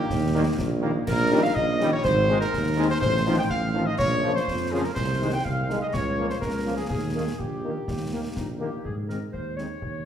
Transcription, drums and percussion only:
0.10 concert bass drum, snare
0.58 concert bass drum, snare
1.07 concert bass drum, snare, crash
1.56 concert bass drum
1.80 snare
2.05 concert bass drum, snare
2.41 snare
2.53 concert bass drum, snare
3.02 concert bass drum, snare
3.50 concert bass drum
3.99 concert bass drum, snare
4.36 snare
4.48 concert bass drum, snare
4.96 concert bass drum, snare, crash
5.45 concert bass drum
5.70 snare
5.94 concert bass drum, snare
6.30 snare
6.42 concert bass drum, snare
6.90 concert bass drum, snare
7.40 concert bass drum
7.88 concert bass drum, snare
8.37 concert bass drum, snare
8.85 concert bass drum
9.10 snare
9.34 concert bass drum
9.58 snare
9.82 concert bass drum

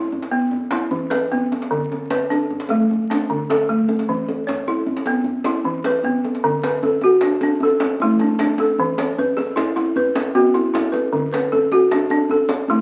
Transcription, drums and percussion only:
0.12 djembe slap, djembe bass
0.22 djembe slap
0.42 djembe slap
0.51 djembe slap, djembe bass
0.71 djembe slap, djembe tone
0.91 djembe bass
1.11 djembe slap, djembe tone
1.32 djembe bass
1.52 djembe tone
1.62 djembe slap
1.72 djembe slap, djembe bass
1.92 djembe tone
2.10 djembe slap, djembe bass
2.21 djembe slap
2.31 djembe tone
2.51 djembe slap, djembe bass
2.60 djembe slap
2.69 djembe tone
2.80 djembe slap
2.91 djembe slap, djembe bass
3.11 djembe slap, djembe tone
3.30 djembe slap, djembe bass
3.50 djembe slap, djembe tone
3.89 djembe tone
3.99 djembe slap
4.09 djembe bass
4.28 djembe tone
4.48 djembe slap, djembe bass
4.68 djembe tone
4.78 djembe slap
4.86 djembe bass
4.97 djembe slap
5.06 djembe tone
5.24 djembe bass
5.44 djembe slap, djembe tone
5.64 djembe bass
5.84 djembe slap, djembe tone
6.03 djembe bass
6.24 djembe tone
6.35 djembe slap
6.44 djembe bass
6.63 djembe slap, djembe tone
6.83 djembe bass
6.92 djembe slap
7.01 djembe tone
7.21 djembe slap
7.41 djembe tone
7.51 djembe slap
7.60 djembe bass
7.80 djembe slap, djembe tone
8.00 djembe bass
8.19 djembe tone
8.39 djembe slap, djembe bass
8.58 djembe tone
8.78 djembe bass
8.98 djembe slap, djembe tone
9.18 djembe bass
9.27 djembe slap
9.38 djembe tone
9.57 djembe slap, djembe bass
9.77 djembe tone
9.86 djembe slap
9.96 djembe bass
10.16 djembe slap, djembe tone
10.35 djembe bass
10.55 djembe tone
10.75 djembe slap, djembe bass
10.94 djembe tone
11.13 djembe bass
11.34 djembe slap, djembe tone
11.53 djembe bass
11.63 djembe slap
11.72 djembe tone
11.91 djembe slap, djembe bass
12.10 djembe tone
12.20 djembe slap
12.29 djembe bass
12.49 djembe slap, djembe tone
12.68 djembe bass

